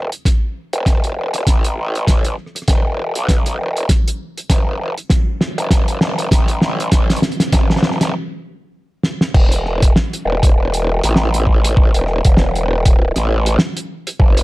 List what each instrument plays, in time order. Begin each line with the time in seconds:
Already playing: wobble bass E1
0.12 closed hi-hat
0.25 kick, snare, closed hi-hat
0.73 wobble bass E1, closed hi-hat
0.86 kick, snare, closed hi-hat
1.04 closed hi-hat
1.16 wobble bass E1
1.34 cross-stick, closed hi-hat
1.47 wobble bass A1, kick, snare, closed hi-hat
1.64 closed hi-hat
1.95 closed hi-hat
2.07 kick, snare, closed hi-hat
2.24 closed hi-hat
2.38 cross-stick
2.46 cross-stick
2.55 cross-stick, closed hi-hat
2.62 cross-stick
2.68 wobble bass E1, kick, snare, closed hi-hat
3.15 wobble bass B1, closed hi-hat
3.29 kick, snare, closed hi-hat
3.46 cross-stick, closed hi-hat
3.59 wobble bass E1
3.77 closed hi-hat
3.89 kick, snare, closed hi-hat
4.08 closed hi-hat
4.38 closed hi-hat
4.49 wobble bass F#1, kick, snare, closed hi-hat
4.79 wobble bass F#1
4.98 closed hi-hat
5.10 kick, snare, closed hi-hat
5.41 snare
5.58 wobble bass F#1, closed hi-hat
5.71 kick, snare, closed hi-hat
5.88 closed hi-hat
6.01 snare
6.18 closed hi-hat
6.31 wobble bass A1, kick, snare, closed hi-hat
6.48 closed hi-hat
6.61 snare
6.80 closed hi-hat
6.92 kick, snare, closed hi-hat
7.10 snare, closed hi-hat
7.16 closed hi-hat
7.22 snare, closed hi-hat
7.32 closed hi-hat
7.40 snare, closed hi-hat
7.53 wobble bass F#1, kick, snare, closed hi-hat
7.70 snare
7.76 snare
7.82 snare
7.91 snare
8.01 wobble bass F#1, snare, closed hi-hat
9.03 snare
9.21 snare
9.34 wobble bass E1, kick, crash
9.52 closed hi-hat
9.66 cross-stick
9.82 kick, closed hi-hat
9.96 snare
10.13 closed hi-hat
10.25 wobble bass E1
10.43 kick, closed hi-hat
10.56 wobble bass E1
10.74 closed hi-hat
11.04 wobble bass A1, cross-stick, closed hi-hat
11.16 snare
11.34 closed hi-hat
11.47 kick
11.64 closed hi-hat
11.77 kick
11.94 wobble bass E1, closed hi-hat
12.07 cross-stick
12.25 wobble bass E1, kick, closed hi-hat
12.37 snare
12.55 closed hi-hat
12.85 kick, closed hi-hat
13.16 wobble bass A1, cross-stick, snare, closed hi-hat
13.46 closed hi-hat
13.59 snare
13.77 closed hi-hat
14.07 closed hi-hat
14.19 wobble bass F#1, kick
14.37 closed hi-hat